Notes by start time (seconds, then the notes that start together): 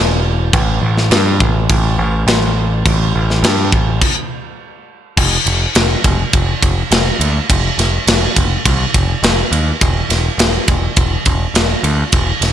Already playing: E1
0.53 A1, kick, crash
0.81 A1
0.97 snare
1.11 G2, snare, crash
1.40 A1, kick
1.69 A1, kick, crash
1.98 A1
2.27 A1, snare, crash
2.85 A1, kick, crash
3.14 A1
3.30 snare
3.43 G2, snare, crash
3.72 A1, kick
4.02 kick, crash
5.17 F1, kick, crash
5.46 F1, ride
5.75 F1, snare, ride
6.04 F1, kick, ride
6.33 F1, kick, ride
6.62 F1, kick, ride
6.91 F1, snare, ride
7.20 D2, ride
7.50 F1, kick, ride
7.78 F1, snare, ride
8.07 F1, snare, ride
8.36 F1, kick, ride
8.65 C2, kick, ride
8.94 F1, kick, ride
9.23 F1, snare, ride
9.52 D#2, ride
9.81 E1, kick, ride
10.09 E1, snare, ride
10.38 E1, snare, ride
10.68 E1, kick, ride
10.96 E1, kick, ride
11.25 E1, kick, ride
11.54 E1, snare, ride
11.83 D2, ride
12.12 E1, kick, ride
12.41 E1, snare, ride